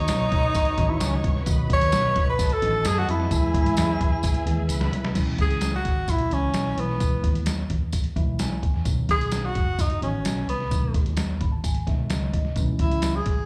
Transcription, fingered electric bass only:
0, 0, Header, 1, 3, 480
1, 0, Start_track
1, 0, Tempo, 462250
1, 1523, Time_signature, 4, 2, 24, 8
1, 13973, End_track
2, 0, Start_track
2, 0, Title_t, "Fingered electric bass"
2, 0, Program_c, 0, 33
2, 90, Note_on_c, 0, 35, 104
2, 295, Note_off_c, 0, 35, 0
2, 332, Note_on_c, 0, 35, 83
2, 536, Note_off_c, 0, 35, 0
2, 806, Note_on_c, 0, 33, 112
2, 1012, Note_off_c, 0, 33, 0
2, 1044, Note_on_c, 0, 37, 90
2, 1251, Note_off_c, 0, 37, 0
2, 1288, Note_on_c, 0, 36, 110
2, 1493, Note_off_c, 0, 36, 0
2, 1519, Note_on_c, 0, 35, 98
2, 1831, Note_off_c, 0, 35, 0
2, 1885, Note_on_c, 0, 39, 95
2, 1987, Note_off_c, 0, 39, 0
2, 2005, Note_on_c, 0, 35, 117
2, 2210, Note_off_c, 0, 35, 0
2, 2243, Note_on_c, 0, 35, 81
2, 2449, Note_off_c, 0, 35, 0
2, 2721, Note_on_c, 0, 33, 103
2, 2927, Note_off_c, 0, 33, 0
2, 2959, Note_on_c, 0, 42, 92
2, 3166, Note_off_c, 0, 42, 0
2, 3201, Note_on_c, 0, 41, 102
2, 3406, Note_off_c, 0, 41, 0
2, 3437, Note_on_c, 0, 40, 115
2, 3747, Note_off_c, 0, 40, 0
2, 3792, Note_on_c, 0, 44, 92
2, 3898, Note_off_c, 0, 44, 0
2, 3913, Note_on_c, 0, 40, 96
2, 4121, Note_off_c, 0, 40, 0
2, 4162, Note_on_c, 0, 40, 80
2, 4366, Note_off_c, 0, 40, 0
2, 4629, Note_on_c, 0, 39, 96
2, 4839, Note_off_c, 0, 39, 0
2, 4866, Note_on_c, 0, 37, 92
2, 5077, Note_off_c, 0, 37, 0
2, 5112, Note_on_c, 0, 36, 100
2, 5320, Note_off_c, 0, 36, 0
2, 5352, Note_on_c, 0, 35, 105
2, 5560, Note_off_c, 0, 35, 0
2, 5593, Note_on_c, 0, 37, 80
2, 6078, Note_on_c, 0, 32, 75
2, 6094, Note_off_c, 0, 37, 0
2, 6284, Note_off_c, 0, 32, 0
2, 6314, Note_on_c, 0, 35, 97
2, 6522, Note_off_c, 0, 35, 0
2, 6553, Note_on_c, 0, 37, 85
2, 6761, Note_off_c, 0, 37, 0
2, 6791, Note_on_c, 0, 35, 82
2, 7000, Note_off_c, 0, 35, 0
2, 7032, Note_on_c, 0, 35, 95
2, 7449, Note_off_c, 0, 35, 0
2, 7516, Note_on_c, 0, 39, 82
2, 7931, Note_off_c, 0, 39, 0
2, 7997, Note_on_c, 0, 40, 79
2, 8412, Note_off_c, 0, 40, 0
2, 8474, Note_on_c, 0, 35, 90
2, 8787, Note_off_c, 0, 35, 0
2, 8959, Note_on_c, 0, 39, 90
2, 9063, Note_off_c, 0, 39, 0
2, 9081, Note_on_c, 0, 40, 83
2, 9184, Note_off_c, 0, 40, 0
2, 9199, Note_on_c, 0, 35, 106
2, 9407, Note_off_c, 0, 35, 0
2, 9438, Note_on_c, 0, 35, 82
2, 9854, Note_off_c, 0, 35, 0
2, 9922, Note_on_c, 0, 30, 77
2, 10337, Note_off_c, 0, 30, 0
2, 10404, Note_on_c, 0, 33, 92
2, 10611, Note_off_c, 0, 33, 0
2, 10641, Note_on_c, 0, 35, 82
2, 10849, Note_off_c, 0, 35, 0
2, 10881, Note_on_c, 0, 36, 84
2, 11090, Note_off_c, 0, 36, 0
2, 11125, Note_on_c, 0, 35, 110
2, 11332, Note_off_c, 0, 35, 0
2, 11366, Note_on_c, 0, 39, 84
2, 11848, Note_on_c, 0, 32, 77
2, 11863, Note_off_c, 0, 39, 0
2, 12261, Note_off_c, 0, 32, 0
2, 12326, Note_on_c, 0, 35, 86
2, 12534, Note_off_c, 0, 35, 0
2, 12569, Note_on_c, 0, 37, 88
2, 12776, Note_off_c, 0, 37, 0
2, 12808, Note_on_c, 0, 36, 82
2, 13015, Note_off_c, 0, 36, 0
2, 13046, Note_on_c, 0, 35, 102
2, 13254, Note_off_c, 0, 35, 0
2, 13287, Note_on_c, 0, 37, 85
2, 13703, Note_off_c, 0, 37, 0
2, 13770, Note_on_c, 0, 32, 79
2, 13973, Note_off_c, 0, 32, 0
2, 13973, End_track
3, 0, Start_track
3, 0, Title_t, "Muted fingered electric bass strokes"
3, 690, Note_on_c, 9, 29, 49
3, 794, Note_off_c, 9, 29, 0
3, 2602, Note_on_c, 9, 29, 48
3, 2706, Note_off_c, 9, 29, 0
3, 4511, Note_on_c, 9, 29, 52
3, 4614, Note_off_c, 9, 29, 0
3, 13973, End_track
0, 0, End_of_file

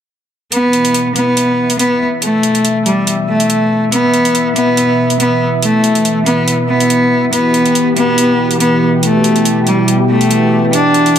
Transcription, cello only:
0, 0, Header, 1, 2, 480
1, 0, Start_track
1, 0, Key_signature, 1, "minor"
1, 0, Tempo, 425532
1, 585, Time_signature, 4, 2, 24, 8
1, 12620, End_track
2, 0, Start_track
2, 0, Title_t, "Cello"
2, 0, Program_c, 0, 42
2, 584, Note_on_c, 0, 59, 87
2, 1217, Note_off_c, 0, 59, 0
2, 1304, Note_on_c, 0, 59, 88
2, 1937, Note_off_c, 0, 59, 0
2, 2024, Note_on_c, 0, 59, 81
2, 2315, Note_off_c, 0, 59, 0
2, 2504, Note_on_c, 0, 57, 85
2, 3137, Note_off_c, 0, 57, 0
2, 3224, Note_on_c, 0, 55, 79
2, 3515, Note_off_c, 0, 55, 0
2, 3705, Note_on_c, 0, 57, 89
2, 4337, Note_off_c, 0, 57, 0
2, 4424, Note_on_c, 0, 59, 93
2, 5057, Note_off_c, 0, 59, 0
2, 5146, Note_on_c, 0, 59, 87
2, 5778, Note_off_c, 0, 59, 0
2, 5864, Note_on_c, 0, 59, 80
2, 6155, Note_off_c, 0, 59, 0
2, 6345, Note_on_c, 0, 57, 85
2, 6977, Note_off_c, 0, 57, 0
2, 7065, Note_on_c, 0, 59, 79
2, 7355, Note_off_c, 0, 59, 0
2, 7545, Note_on_c, 0, 59, 86
2, 8177, Note_off_c, 0, 59, 0
2, 8266, Note_on_c, 0, 59, 91
2, 8898, Note_off_c, 0, 59, 0
2, 8985, Note_on_c, 0, 59, 88
2, 9617, Note_off_c, 0, 59, 0
2, 9705, Note_on_c, 0, 59, 80
2, 9995, Note_off_c, 0, 59, 0
2, 10186, Note_on_c, 0, 57, 88
2, 10818, Note_off_c, 0, 57, 0
2, 10906, Note_on_c, 0, 55, 82
2, 11196, Note_off_c, 0, 55, 0
2, 11386, Note_on_c, 0, 57, 90
2, 12018, Note_off_c, 0, 57, 0
2, 12105, Note_on_c, 0, 62, 92
2, 12620, Note_off_c, 0, 62, 0
2, 12620, End_track
0, 0, End_of_file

